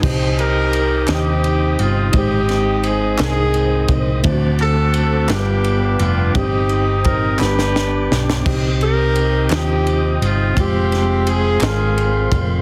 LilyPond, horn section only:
\new Staff \with { instrumentName = "Horn section" } { \time 6/8 \key c \minor \tempo 4. = 57 << { r8 bes'4 g'4 f'8 | g'4 aes'8 aes'4 r8 | r8 a'4 g'4 f'8 | g'4 bes'8 b'4 r8 |
r8 bes'4 g'4 f'8 | g'4 aes'8 aes'4 r8 | } \\ { r8 <ees' g'>4 <c' ees'>4. | <c' ees'>4. <c' ees'>4. | r8 <c' fis'>4 <b d'>4. | <c' ees'>4. <d' g'>4. |
r8 <ees' g'>4 <c' ees'>4. | c'4. <c' f'>4. | } >> }